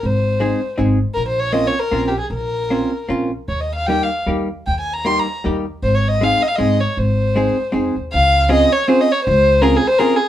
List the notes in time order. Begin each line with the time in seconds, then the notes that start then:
0.03 G#1 C5
0.40 G#3 C4 D#4 G#4
0.78 G#1 G#3 C4 D#4 G#4
1.14 A#1 A#4
1.28 C5
1.40 C#5
1.52 A#3 C4 C#4 F4 D#5
1.67 C#5
1.79 A#4
1.91 A#1 A#3 C4 C#4 F4
2.08 G4
2.20 G#4
2.30 A#1 A#4
2.70 A#3 C4 C#4 F4
3.08 A#1 A#3 C4 C#4 F4
3.48 D#2 C#5
3.60 D#5
3.75 F5
3.86 G3 A#3 D#4 G4 G5
4.03 F5
4.26 D#2 G3 A#3 D#4 G4
4.67 D#2 G5
4.80 G#5
4.93 A#5
5.05 G3 A#3 D#4 G4 C6
5.19 A#5
5.44 D#2 G3 A#3 D#4 G4
5.82 G#1 C5
5.95 C#5
6.08 D#5
6.21 G#3 C4 D#4 G#4 F5
6.42 D#5
6.48 F5
6.56 G#3 C4 D#4 G#4 D#5
6.60 G#1
6.80 C#5
6.97 G#1 C5
7.36 G#3 C4 D#4 G#4
7.72 F2 G#3 C4 D#4 G#4
7.95 D#2
8.13 C#2 F5
8.49 C4 C#4 F4 G#4 D#5
8.72 C#5
8.88 C4 C#4 F4 G#4 C5
9.01 D#5
9.12 C#5
9.25 C#2 C5
9.62 C4 C#4 F4 G#4 A#4
9.77 G#4
9.87 C5
9.99 C4 C#4 F4 G#4 A#4
10.16 G#4